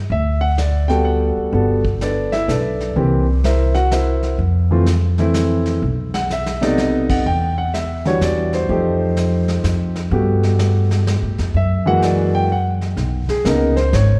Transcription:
0.10 upright bass D2, grand piano E5, brush sweep
0.41 grand piano F#5
0.58 grand piano D5, snare, hi-hat pedal
0.88 grand piano G3 B3 F#4 A4 G5, snare
1.05 grand piano F#5
1.37 muted upright bass stroke
1.53 upright bass G1, grand piano G3 B3 F#4 A4, brush sweep
1.85 kick
2.01 grand piano D4 A4 B4 D5, snare, hi-hat pedal
2.32 grand piano E4 E5, snare
2.48 upright bass B1, grand piano D4 A4 B4 D5, snare, hi-hat pedal
2.80 snare
2.96 upright bass C2, grand piano E3 A#3 C4 G4, brush sweep
3.44 grand piano E4 A#4 C5 E5, snare, hi-hat pedal
3.75 grand piano F#4 F#5, snare
3.91 grand piano E4 A#4 C5 E5, snare, hi-hat pedal
4.23 snare
4.38 upright bass F2, brush sweep
4.71 grand piano E3 A3 C4 F4
4.86 snare, hi-hat pedal
5.18 grand piano E3 A3 C4 E4, snare
5.34 snare, hi-hat pedal
5.66 snare
5.82 upright bass B1, brush sweep
6.14 grand piano F#5, snare
6.30 grand piano E5, snare, hi-hat pedal
6.46 snare
6.61 grand piano C3 A3 B3 D#4 D5, snare
6.78 grand piano D#5, snare
7.10 grand piano F#5, kick, crash
7.26 upright bass E2, grand piano G5, brush sweep
7.58 grand piano F#5
7.74 grand piano E5, snare, hi-hat pedal
8.05 grand piano E3 G3 D4 F#4 C#5, snare
8.21 upright bass E2, grand piano D5, snare, hi-hat pedal
8.53 grand piano C5, snare
8.69 upright bass F2, grand piano F3 A3 D#4 G4, brush sweep
9.17 snare, hi-hat pedal
9.48 snare
9.64 upright bass F2, snare, hi-hat pedal
9.96 snare
10.11 upright bass G2, grand piano A3 B3 F#4 G4, brush sweep
10.43 snare
10.59 snare, hi-hat pedal
10.91 snare
11.07 snare, hi-hat pedal
11.22 upright bass A2
11.38 upright bass F2, snare
11.54 upright bass F#2, grand piano E5, brush sweep
11.86 grand piano E3 G#3 A#3 F#4 F#5
12.02 grand piano D5, snare, hi-hat pedal
12.35 grand piano G5
12.52 grand piano F#5
12.81 snare
12.97 upright bass B1, brush sweep, snare
13.28 grand piano G#4, muted upright bass stroke, snare
13.44 upright bass C#2, grand piano C#3 A#3 B3 D#4 A#4, snare, hi-hat pedal
13.77 grand piano C5, snare
13.93 upright bass G#1, grand piano C#5, snare, hi-hat pedal

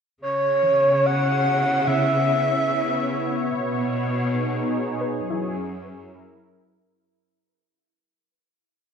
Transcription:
0.21 cello section C#3, analog synth pad C#3, soft synth lead C#5
0.62 synth pluck E3
0.72 analog synth pad B3
1.04 analog synth pad E4, soft synth lead F#5
1.38 analog synth pad C#5
1.87 synth pluck C#3, soft synth lead E5
3.53 analog synth pad B2, cello section B2
4.27 analog synth pad D#4 G#4
5.01 synth pluck B4
5.18 cello section F#2, analog synth pad F#3
5.30 synth pluck E4
5.36 analog synth pad C#4
5.92 analog synth pad E4 A#4

